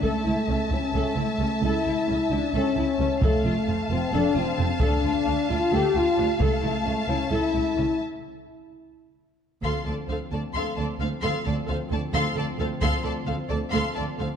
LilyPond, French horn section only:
\new Staff \with { instrumentName = "French horn section" } { \time 7/8 \key a \phrygian \tempo 4 = 132 a4. cis'8 cis'8 a4 | e'4. d'8 cis'8 cis'4 | a4. c'8 d'8 c'4 | d'4. f'8 g'8 f'4 |
a4. cis'8 e'4. | r2. r8 | \key d \minor <f c'>2.~ <f c'>8~ | <f c'>2.~ <f c'>8~ |
<f c'>2.~ <f c'>8 | }